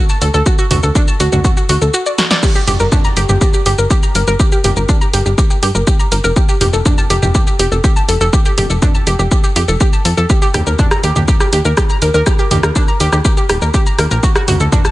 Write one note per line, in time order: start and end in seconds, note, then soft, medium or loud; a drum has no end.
0.09 0.18 A5 medium
0.09 shaker soft
0.22 0.30 D2 medium
0.22 0.33 A4 medium
0.22 open hi-hat medium
0.22 shaker medium
0.34 0.42 D2 medium
0.34 0.43 A4 medium
0.34 shaker soft
0.46 0.55 F#4 medium
0.46 kick loud
0.46 shaker medium
0.58 0.64 F#4 loud
0.58 shaker soft
0.71 0.79 D2 medium
0.71 0.76 F#4 loud
0.71 mid tom medium
0.71 open hi-hat medium
0.71 shaker medium
0.83 0.91 D2 medium
0.83 0.92 A4 medium
0.83 shaker soft
0.95 1.05 D4 medium
0.95 kick loud
0.95 shaker medium
1.08 1.17 A5 medium
1.08 shaker soft
1.20 1.28 D2 medium
1.20 1.31 F#4 loud
1.20 open hi-hat medium
1.20 shaker medium
1.32 1.41 D2 medium
1.32 1.41 F#4 medium
1.32 mid tom medium
1.32 shaker soft
1.45 1.54 F#4 medium
1.45 kick loud
1.45 shaker medium
1.57 1.66 F#4 medium
1.57 shaker soft
1.69 1.78 D2 medium
1.69 1.81 F#4 loud
1.69 open hi-hat medium
1.69 shaker medium
1.81 1.90 D2 medium
1.81 1.91 A4 medium
1.81 shaker soft
1.94 2.03 F#4 loud
1.94 shaker medium
2.06 2.12 D5 medium
2.06 shaker soft
2.18 2.27 F#4 loud
2.18 snare medium
2.18 open hi-hat medium
2.18 shaker medium
2.31 2.40 D5 loud
2.31 snare medium
2.31 shaker soft
2.43 2.52 G4 medium
2.43 kick loud
2.43 crash medium
2.43 shaker medium
2.55 2.61 G4 loud
2.55 shaker soft
2.67 2.76 G1 medium
2.67 2.73 G4 loud
2.67 mid tom medium
2.67 open hi-hat medium
2.67 shaker medium
2.80 2.88 G1 medium
2.80 2.89 A#4 medium
2.80 shaker soft
2.92 3.01 D4 loud
2.92 kick loud
2.92 mid tom medium
2.92 shaker medium
3.04 3.14 A#5 medium
3.04 shaker soft
3.17 3.25 G1 medium
3.17 3.28 G4 loud
3.17 open hi-hat loud
3.17 shaker medium
3.29 3.37 G1 medium
3.29 3.38 G4 medium
3.29 mid tom medium
3.29 shaker soft
3.41 3.51 G4 medium
3.41 kick loud
3.41 shaker medium
3.54 3.63 G4 medium
3.54 shaker soft
3.66 3.74 G1 medium
3.66 3.71 G4 loud
3.66 open hi-hat loud
3.66 shaker medium
3.78 3.87 G1 medium
3.78 3.87 A#4 medium
3.78 shaker soft
3.90 4.00 G4 medium
3.90 kick loud
3.90 shaker medium
4.03 4.12 A#5 medium
4.03 shaker soft
4.15 4.24 G1 medium
4.15 4.26 A#4 medium
4.15 open hi-hat loud
4.15 shaker medium
4.27 4.36 G1 medium
4.27 4.37 A#4 loud
4.27 shaker soft
4.40 4.49 G4 medium
4.40 kick loud
4.40 shaker medium
4.52 4.58 G4 medium
4.52 shaker soft
4.64 4.73 G1 medium
4.64 4.70 G4 loud
4.64 mid tom medium
4.64 open hi-hat loud
4.64 shaker medium
4.76 4.85 G1 medium
4.76 4.86 A#4 medium
4.76 shaker soft
4.89 4.98 D4 loud
4.89 kick loud
4.89 shaker medium
5.01 5.10 A#5 medium
5.01 shaker soft
5.13 5.22 G1 medium
5.13 5.25 G4 loud
5.13 open hi-hat loud
5.13 shaker medium
5.26 5.34 G1 medium
5.26 5.35 G4 medium
5.26 shaker soft
5.38 5.47 G4 medium
5.38 kick loud
5.38 shaker medium
5.50 5.59 G4 medium
5.50 shaker soft
5.63 5.71 G2 medium
5.63 5.68 G4 medium
5.63 open hi-hat loud
5.63 shaker medium
5.75 5.83 G1 medium
5.75 5.84 A#4 medium
5.75 shaker soft
5.87 5.96 G4 loud
5.87 kick loud
5.87 shaker medium
6.00 6.09 A#5 medium
6.00 shaker soft
6.12 6.20 G1 medium
6.12 6.23 A#4 medium
6.12 open hi-hat loud
6.12 shaker medium
6.24 6.32 F1 medium
6.24 6.33 A#4 loud
6.24 shaker soft
6.36 6.46 G4 medium
6.36 kick loud
6.36 shaker medium
6.49 6.54 G4 loud
6.49 shaker soft
6.61 6.69 F1 medium
6.61 6.66 G4 medium
6.61 mid tom medium
6.61 open hi-hat loud
6.61 shaker medium
6.73 6.82 F1 medium
6.73 6.82 A4 medium
6.73 shaker soft
6.86 6.95 D4 medium
6.86 kick loud
6.86 mid tom medium
6.86 shaker medium
6.98 7.07 A5 medium
6.98 shaker soft
7.10 7.19 F1 medium
7.10 7.21 G4 loud
7.10 open hi-hat loud
7.10 shaker medium
7.22 7.31 F1 medium
7.22 7.32 G4 medium
7.22 mid tom medium
7.22 shaker soft
7.35 7.44 G4 medium
7.35 kick loud
7.35 shaker medium
7.47 7.56 G4 medium
7.47 shaker soft
7.59 7.68 F1 medium
7.59 7.65 G4 loud
7.59 open hi-hat loud
7.59 shaker medium
7.72 7.80 F1 medium
7.72 7.81 A4 medium
7.72 shaker soft
7.84 7.93 G4 loud
7.84 kick loud
7.84 shaker medium
7.96 8.05 A5 medium
7.96 shaker soft
8.08 8.17 F1 medium
8.08 8.20 A4 medium
8.08 open hi-hat loud
8.08 shaker soft
8.21 8.29 F1 medium
8.21 8.30 A4 loud
8.21 shaker soft
8.33 8.42 G4 medium
8.33 kick loud
8.33 shaker medium
8.45 8.51 G4 loud
8.45 shaker soft
8.58 8.66 F1 medium
8.58 8.63 G4 loud
8.58 mid tom medium
8.58 open hi-hat loud
8.58 shaker soft
8.70 8.78 F1 medium
8.70 8.79 A4 medium
8.70 shaker soft
8.82 8.91 D4 loud
8.82 kick loud
8.82 mid tom medium
8.82 shaker medium
8.95 9.04 A5 medium
8.95 shaker soft
9.07 9.15 F1 medium
9.07 9.18 G4 loud
9.07 open hi-hat loud
9.07 shaker soft
9.19 9.27 F1 medium
9.19 9.28 G4 medium
9.19 shaker soft
9.31 9.41 G4 medium
9.31 kick loud
9.31 shaker medium
9.44 9.53 G4 medium
9.44 shaker soft
9.56 9.64 F2 medium
9.56 9.61 G4 medium
9.56 open hi-hat loud
9.56 shaker medium
9.68 9.77 F1 medium
9.68 9.77 A4 medium
9.68 shaker soft
9.80 9.90 G4 loud
9.80 kick loud
9.80 shaker medium
9.93 10.02 A5 medium
9.93 shaker soft
10.05 10.14 F2 medium
10.05 10.16 A4 medium
10.05 open hi-hat loud
10.05 shaker medium
10.17 10.26 F2 medium
10.17 10.27 A4 loud
10.17 shaker soft
10.30 10.39 G4 medium
10.30 kick loud
10.30 shaker medium
10.42 10.48 G4 loud
10.42 shaker soft
10.54 10.63 D#2 medium
10.54 10.60 G4 loud
10.54 cross-stick soft
10.54 mid tom medium
10.54 open hi-hat loud
10.54 shaker medium
10.67 10.75 D#2 medium
10.67 10.76 A#4 medium
10.67 shaker soft
10.79 10.88 D4 loud
10.79 kick loud
10.79 mid tom medium
10.79 shaker medium
10.91 11.00 A#5 medium
10.91 cross-stick medium
10.91 shaker soft
11.04 11.12 D#2 medium
11.04 11.15 G4 loud
11.04 open hi-hat loud
11.04 shaker medium
11.16 11.24 D#2 medium
11.16 11.25 G4 medium
11.16 mid tom medium
11.16 shaker soft
11.28 11.37 G4 medium
11.28 kick loud
11.28 shaker medium
11.40 11.50 G4 medium
11.40 cross-stick soft
11.40 shaker soft
11.53 11.61 D#2 medium
11.53 11.58 G4 loud
11.53 open hi-hat loud
11.53 shaker medium
11.65 11.73 D#2 medium
11.65 11.74 A#4 medium
11.65 shaker soft
11.77 11.87 G4 loud
11.77 kick loud
11.77 cross-stick medium
11.77 shaker medium
11.90 11.99 A#5 medium
11.90 shaker soft
12.02 12.10 D#2 medium
12.02 12.13 A#4 medium
12.02 open hi-hat loud
12.02 shaker medium
12.14 12.23 D#2 medium
12.14 12.23 A#4 loud
12.14 shaker soft
12.26 12.36 G4 medium
12.26 kick loud
12.26 cross-stick medium
12.26 shaker medium
12.39 12.44 G4 loud
12.39 shaker soft
12.51 12.59 D#2 medium
12.51 12.57 G4 loud
12.51 mid tom medium
12.51 open hi-hat loud
12.51 shaker medium
12.63 12.72 D#2 medium
12.63 12.73 A#4 medium
12.63 cross-stick medium
12.63 shaker soft
12.76 12.85 D4 loud
12.76 kick loud
12.76 shaker medium
12.88 12.97 A#5 medium
12.88 shaker soft
13.00 13.09 D#2 medium
13.00 13.12 G4 loud
13.00 open hi-hat loud
13.00 shaker medium
13.12 13.21 D#2 medium
13.12 13.22 G4 medium
13.12 cross-stick medium
13.12 shaker soft
13.25 13.34 G4 medium
13.25 kick loud
13.25 shaker medium
13.37 13.46 G4 medium
13.37 shaker soft
13.49 13.58 D#1 medium
13.49 13.55 G4 loud
13.49 cross-stick medium
13.49 open hi-hat loud
13.49 shaker medium
13.62 13.70 D#2 medium
13.62 13.71 A#4 medium
13.62 shaker soft
13.74 13.83 G4 loud
13.74 kick loud
13.74 shaker medium
13.86 13.96 A#5 medium
13.86 shaker soft
13.99 14.07 D#2 medium
13.99 14.10 A#4 medium
13.99 cross-stick medium
13.99 open hi-hat loud
13.99 shaker medium
14.11 14.19 A#1 medium
14.11 14.20 A#4 loud
14.11 shaker soft
14.23 14.32 F#4 medium
14.23 kick loud
14.23 shaker medium
14.36 14.41 F#4 loud
14.36 cross-stick medium
14.36 shaker soft
14.48 14.56 D2 medium
14.48 14.53 F#4 loud
14.48 mid tom loud
14.48 open hi-hat loud
14.48 shaker medium
14.60 14.69 D2 medium
14.60 14.69 A4 medium
14.60 shaker soft
14.72 14.82 D4 loud
14.72 kick loud
14.72 mid tom medium
14.72 shaker medium
14.85 14.91 A5 medium
14.85 cross-stick medium
14.85 shaker soft